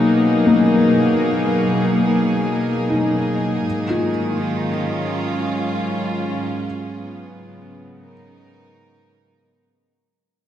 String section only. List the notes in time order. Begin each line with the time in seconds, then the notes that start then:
Already playing: B2 F#3 A#3 D#4 G#4
3.65 G#2
3.80 D#3
4.32 F4
4.66 C#4
6.95 B3
7.28 C#3
8.00 D#4 A#4